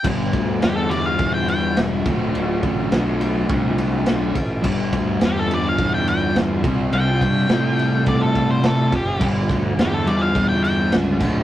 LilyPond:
<<
  \new Staff \with { instrumentName = "Lead electric guitar" } { \time 4/4 \key g \major \tempo 4 = 105 r4 g'16 a'16 d''16 f''8 g''16 g''8 r4 | r1 | r4 g'16 a'16 d''16 f''8 g''16 g''8 r4 | g''2 d''16 a'8 c''16 a'8 g'8 |
r4 g'16 a'16 d''16 f''8 g''16 g''8 r4 | }
  \new Staff \with { instrumentName = "Distorted electric guitar" } { \clef bass \time 4/4 \key g \major <g, d g>4. <g, d g>2 <d, a, d>8~ | <d, a, d>4 <d, a, d>2~ <d, a, d>8 r8 | <g, d g>4. <g, d g>2 <c g c'>8~ | <c g c'>4 <c g c'>2~ <c g c'>8 r8 |
<g, d g>4. <g, d g>2 <d, a, d>8 | }
  \new Staff \with { instrumentName = "Fingered electric bass" } { \clef bass \time 4/4 \key g \major g,,8 d,8 e,4 e,4 e,,8 d,,8 | d,,8 a,,8 b,,4 c,4 b,,8 a,,8 | g,,8 d,8 e,4 e,4 e,8 c,8 | c,8 g,8 a,4 a,4 a,8 fis,,8 |
g,,8 d,8 e,4 e,4 cis,8 d,,8 | }
  \new DrumStaff \with { instrumentName = "Drums" } \drummode { \time 4/4 <cymc bd>8 <bd cymr>8 <cymr sn>8 cymr8 <bd cymr>8 cymr8 <cymr sn>8 <bd cymr>8 | cymr8 <bd cymr>8 <cymr sn>8 cymr8 <bd cymr>8 cymr8 <cymr sn>8 <bd cymr>8 | <cymc bd>8 <bd cymr>8 <cymr sn>8 cymr8 <bd cymr>8 cymr8 <cymr sn>8 <bd cymr>8 | cymr8 <bd cymr>8 <cymr sn>8 cymr8 <bd cymr>8 <bd cymr>8 <cymr sn>8 <bd cymr>8 |
<cymc bd>8 <bd cymr>8 <cymr sn>8 cymr8 <bd cymr>8 cymr8 <cymr sn>8 <cymc bd>8 | }
>>